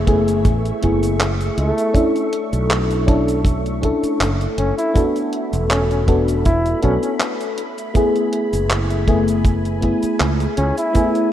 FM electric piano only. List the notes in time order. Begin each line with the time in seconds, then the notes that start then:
Already playing: A3 B3 E4 G#4
0.07 A3 B3 E4 G#4
0.81 A3 B3 E4 G#4
1.94 C#4 D4 E4 A4
3.07 C#4 D4 E4 A4
3.82 C#4 D4 E4 A4
4.94 B3 D4 F#4 A4
6.07 B3 D4 F#4 A4
6.82 B3 D4 F#4 A4
7.94 A3 B3 E4 G#4
9.08 A3 B3 E4 G#4
9.81 A3 B3 E4 G#4
10.93 A3 B3 E4 G#4